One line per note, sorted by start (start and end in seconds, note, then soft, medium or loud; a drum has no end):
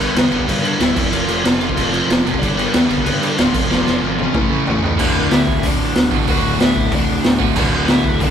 0.00 0.15 G2 medium
0.00 0.16 D3 medium
0.00 0.16 G3 medium
0.00 0.46 B3 medium
0.00 0.48 B4 medium
0.00 crash medium
0.15 0.27 E2 loud
0.15 0.31 G2 medium
0.15 0.31 D3 medium
0.15 0.30 G3 loud
0.15 snare loud
0.15 crash medium
0.31 0.43 G1 medium
0.31 0.45 G2 medium
0.31 0.46 D3 medium
0.31 0.46 G3 loud
0.31 crash medium
0.40 kick medium
0.46 0.63 G2 loud
0.46 0.71 G2 medium
0.46 0.62 D3 loud
0.46 0.62 G3 loud
0.46 0.64 B4 medium
0.46 kick medium
0.46 crash medium
0.52 0.65 B3 medium
0.63 0.79 G2 medium
0.63 0.79 D3 medium
0.63 0.80 G3 loud
0.63 0.80 D5 medium
0.63 crash medium
0.67 0.81 D4 medium
0.80 0.92 D1 medium
0.80 0.95 G2 medium
0.80 0.95 D3 medium
0.80 0.96 G3 medium
0.80 1.12 E4 medium
0.80 1.12 E5 loud
0.80 snare loud
0.80 crash medium
0.96 1.08 F1 medium
0.96 1.12 F2 medium
0.96 1.12 C3 medium
0.96 1.11 F3 loud
0.96 kick loud
0.96 crash loud
1.12 1.24 F1 medium
1.12 1.27 F2 medium
1.12 1.27 C3 loud
1.12 1.28 F3 loud
1.12 1.57 F5 loud
1.12 crash medium
1.16 1.59 F4 medium
1.28 1.40 F1 medium
1.28 1.43 F2 medium
1.28 1.43 C3 medium
1.28 1.42 F3 medium
1.28 crash medium
1.44 1.68 F1 medium
1.44 1.59 F2 medium
1.44 1.59 C3 medium
1.44 1.60 F3 medium
1.44 snare loud
1.44 crash medium
1.60 1.77 F2 medium
1.60 1.77 C3 medium
1.60 1.76 F3 medium
1.60 2.23 F4 medium
1.60 2.21 F5 loud
1.60 crash medium
1.69 kick medium
1.77 2.00 F1 loud
1.77 1.92 F2 medium
1.77 1.92 C3 loud
1.77 1.92 F3 loud
1.77 kick loud
1.77 crash medium
1.93 2.09 F2 medium
1.93 2.09 C3 medium
1.93 2.08 F3 loud
1.93 crash medium
2.09 2.21 F1 medium
2.09 2.24 F2 medium
2.09 2.24 C3 medium
2.09 2.25 F3 medium
2.09 snare loud
2.09 crash medium
2.25 2.37 F1 medium
2.25 2.40 F2 medium
2.25 2.40 C3 medium
2.25 2.41 F3 medium
2.25 crash medium
2.34 kick medium
2.39 2.65 G1 medium
2.39 2.57 G2 loud
2.39 2.56 D3 loud
2.39 2.56 G3 loud
2.39 2.57 D4 medium
2.39 2.57 D5 loud
2.39 kick medium
2.39 crash medium
2.55 2.72 G2 medium
2.55 2.72 D3 medium
2.55 2.73 G3 medium
2.55 3.03 B3 medium
2.55 3.03 B4 medium
2.55 crash medium
2.73 2.86 E2 loud
2.73 2.89 G2 medium
2.73 2.88 D3 medium
2.73 2.88 G3 loud
2.73 snare loud
2.73 crash medium
2.89 3.01 G1 loud
2.89 3.03 G2 medium
2.89 3.04 D3 medium
2.89 3.04 G3 loud
2.89 crash medium
2.98 kick medium
3.04 3.20 G2 loud
3.04 3.29 G2 medium
3.04 3.20 D3 loud
3.04 3.19 G3 loud
3.04 3.22 B3 medium
3.04 3.22 B4 medium
3.04 kick loud
3.04 crash medium
3.20 3.35 G2 medium
3.20 3.36 D3 medium
3.20 3.36 G3 medium
3.20 3.38 D4 medium
3.20 3.36 D5 medium
3.20 crash medium
3.36 3.50 D1 medium
3.36 3.52 G2 medium
3.36 3.52 D3 medium
3.36 3.52 G3 medium
3.36 3.67 F5 loud
3.36 snare loud
3.36 crash medium
3.40 3.69 F4 medium
3.52 3.66 F1 medium
3.52 3.69 F2 loud
3.52 3.69 C3 medium
3.52 3.68 F3 medium
3.52 kick loud
3.52 crash loud
3.68 3.82 F1 loud
3.68 3.83 F2 medium
3.68 3.84 C3 loud
3.68 3.85 F3 loud
3.68 4.16 F4 medium
3.68 4.18 F5 loud
3.68 snare medium
3.85 3.98 F1 medium
3.85 4.01 F2 medium
3.85 4.01 C3 medium
3.85 4.00 F3 loud
3.85 snare medium
4.02 4.26 G#1 loud
4.02 4.17 F2 medium
4.02 4.17 C3 medium
4.02 4.17 F3 medium
4.18 4.33 F2 medium
4.18 4.33 C3 medium
4.18 4.33 F3 medium
4.18 4.80 C#4 medium
4.18 4.79 C#5 medium
4.18 high tom medium
4.33 4.58 A1 medium
4.33 4.49 A2 loud
4.33 4.49 E3 loud
4.33 4.48 A3 loud
4.33 kick loud
4.33 mid tom medium
4.50 4.64 A2 medium
4.50 4.64 E3 medium
4.50 4.65 A3 medium
4.65 4.79 A1 medium
4.65 4.82 A2 medium
4.65 4.81 E3 medium
4.65 4.81 A3 medium
4.65 floor tom loud
4.70 4.84 A3 loud
4.82 4.95 C#2 medium
4.82 4.96 A2 medium
4.82 4.97 E3 medium
4.82 4.97 A3 medium
4.82 floor tom medium
4.97 5.12 D1 loud
4.97 6.13 D2 loud
4.97 6.10 A2 loud
4.97 6.12 D3 loud
4.97 6.11 A3 loud
4.97 5.29 D4 medium
4.97 6.10 F#4 loud
4.97 5.29 D5 medium
4.97 kick loud
4.97 crash loud
5.02 5.64 A2 loud
5.02 5.67 D3 loud
5.16 5.29 D1 medium
5.31 5.45 D2 loud
5.31 5.62 E4 medium
5.31 5.64 E5 loud
5.31 snare loud
5.31 open hi-hat medium
5.47 5.60 D1 medium
5.47 kick medium
5.63 5.76 D1 loud
5.63 6.27 D2 medium
5.63 6.28 A2 medium
5.63 6.25 D4 medium
5.63 6.31 D5 loud
5.63 kick loud
5.63 open hi-hat medium
5.67 6.31 D3 medium
5.79 5.92 A1 loud
5.95 6.09 D1 loud
5.95 snare loud
5.95 open hi-hat medium
6.11 6.25 A1 medium
6.11 6.27 D2 medium
6.11 6.26 A2 medium
6.11 6.28 D3 medium
6.11 6.28 A3 medium
6.11 6.29 F#4 medium
6.11 kick medium
6.27 6.41 D1 loud
6.27 7.40 D2 loud
6.27 7.39 A2 loud
6.27 7.39 D3 medium
6.27 7.39 A3 loud
6.27 6.58 F#4 medium
6.27 7.38 F#4 loud
6.27 6.61 F#5 loud
6.27 kick loud
6.27 open hi-hat medium
6.43 6.57 D1 medium
6.59 6.73 D1 loud
6.59 6.91 E5 loud
6.59 snare loud
6.59 open hi-hat medium
6.63 6.92 E4 medium
6.76 6.89 D1 medium
6.76 kick medium
6.92 7.05 D1 loud
6.92 7.55 D2 medium
6.92 7.56 A2 medium
6.92 7.38 D4 medium
6.92 7.38 D5 medium
6.92 kick loud
6.92 open hi-hat medium
6.96 7.59 D3 medium
7.09 7.22 D1 loud
7.24 7.37 D1 loud
7.24 snare loud
7.24 open hi-hat medium
7.39 7.53 D1 medium
7.39 7.54 D2 medium
7.39 7.54 A2 medium
7.39 7.56 D3 medium
7.39 7.56 A3 medium
7.39 7.56 F#4 medium
7.39 kick medium
7.55 7.69 D1 medium
7.55 8.30 D2 loud
7.55 8.30 A2 loud
7.55 8.30 D3 loud
7.55 8.30 A3 loud
7.55 7.87 D4 medium
7.55 8.30 F#4 loud
7.55 kick loud
7.55 crash loud
7.59 7.88 D5 medium
7.72 7.85 D1 medium
7.88 8.01 D2 loud
7.88 8.20 E4 medium
7.88 8.22 E5 medium
7.88 snare loud
7.88 open hi-hat medium
8.04 8.17 D1 medium
8.04 kick medium
8.19 8.30 D1 medium
8.19 8.30 D2 medium
8.19 8.30 A2 medium
8.19 8.30 D3 loud
8.19 8.30 D4 medium
8.19 8.30 D5 medium
8.19 kick loud
8.19 open hi-hat medium